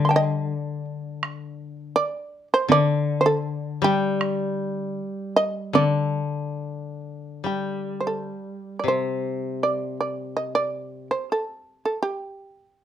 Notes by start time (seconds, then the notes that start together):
Already playing: D3 G3
0.05 C6
0.09 G5 A5
0.16 D#5
1.23 taiko rim
1.96 D5
2.54 C5
2.68 D3 D5, taiko high
3.21 C5
3.26 A4
3.82 G3 G4, taiko rim
4.21 taiko rim
4.83 D#4
5.36 D#5
5.73 D3 D5, taiko high
7.44 G3 G4
8.00 C5
8.07 A4
8.79 D5
8.84 C3
8.88 C5
9.63 D5
10.01 D5
10.37 D#5
10.55 D5
11.11 C5
11.32 A4
11.85 A4
12.03 G4